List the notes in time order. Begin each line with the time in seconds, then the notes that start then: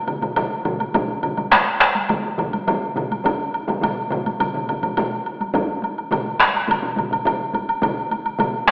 0.08 taiko low-mid, taiko mid, high woodblock
0.22 taiko low-mid, taiko mid, taiko high, high woodblock
0.36 taiko low-mid, taiko mid, taiko high, high woodblock
0.65 taiko low-mid, taiko mid, high woodblock
0.80 taiko high, high woodblock
0.94 taiko, taiko low-mid, taiko mid, taiko high, high woodblock
1.23 taiko low-mid, taiko mid, high woodblock
1.37 taiko low-mid, taiko mid, taiko high, high woodblock
1.51 taiko rim, taiko high, high woodblock
1.81 taiko rim
1.95 taiko high, high woodblock
2.09 taiko low-mid, taiko mid, taiko high, high woodblock
2.38 taiko, taiko low-mid, taiko mid, high woodblock
2.53 taiko high, high woodblock
2.67 taiko, taiko low-mid, taiko mid, taiko high, high woodblock
2.96 taiko low-mid, taiko mid, high woodblock
3.11 taiko high, high woodblock
3.24 taiko, taiko low-mid, taiko mid, taiko high, high woodblock
3.54 high woodblock
3.68 taiko low-mid, taiko mid, taiko high, high woodblock
3.82 taiko low-mid, taiko mid, taiko high, high woodblock
4.11 taiko low-mid, taiko mid, high woodblock
4.26 taiko high, high woodblock
4.40 taiko low-mid, taiko mid, taiko high, high woodblock
4.54 taiko low-mid, taiko mid
4.68 taiko, taiko low-mid, taiko mid, taiko high, high woodblock
4.83 taiko low-mid, taiko mid, taiko high, high woodblock
4.97 taiko low-mid, taiko mid, taiko high, high woodblock
5.26 high woodblock
5.40 taiko high, high woodblock
5.54 taiko, taiko low-mid, taiko mid, taiko high, high woodblock
5.68 taiko high
5.82 taiko high, high woodblock
5.97 taiko high, high woodblock
6.11 taiko low-mid, taiko mid, taiko high, high woodblock
6.26 taiko high
6.40 taiko rim, taiko high, high woodblock
6.54 taiko high, high woodblock
6.68 taiko low-mid, taiko mid, taiko high, high woodblock
6.82 taiko low-mid, taiko mid
6.96 taiko low-mid, taiko mid, taiko high, high woodblock
7.11 taiko low-mid, taiko mid, taiko high, high woodblock
7.25 taiko low-mid, taiko mid, taiko high, high woodblock
7.40 taiko high
7.53 taiko, taiko high, high woodblock
7.69 taiko high, high woodblock
7.82 taiko, taiko low-mid, taiko mid, taiko high, high woodblock
7.97 taiko high
8.11 taiko high, high woodblock
8.26 taiko high, high woodblock
8.39 taiko low-mid, taiko mid, taiko high, high woodblock
8.53 taiko high
8.67 taiko rim, taiko high